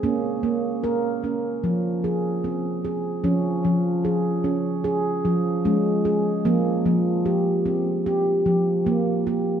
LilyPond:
<<
  \new Staff \with { instrumentName = "Handpan" } { \time 4/4 \key des \lydian \tempo 4 = 75 des'4 bes'8 des'4 aes'8 c'8 aes'8 | des'4 aes'8 des'8 aes'4 des'8 aes'8 | bes4 g'8 c'8 g'4 r8 g'8 | }
  \new Staff \with { instrumentName = "Handpan" } { \clef bass \time 4/4 \key des \lydian bes8 bes8 bes4 f2 | f8 f8 r4. f8 aes4 | f8 f8 r4. f8 bes4 | }
>>